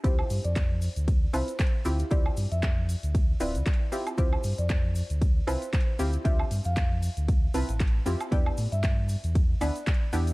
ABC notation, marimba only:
X:1
M:4/4
L:1/16
Q:"Swing 16ths" 1/4=116
K:Ddor
V:1 name="Marimba"
c2 z d2 z4 z c4- c z | d2 z e2 z4 z d4- d z | c2 z d2 z4 z c4- c z | e2 z f2 z4 z a4- a z |
d2 z e2 z4 z d4- d z |]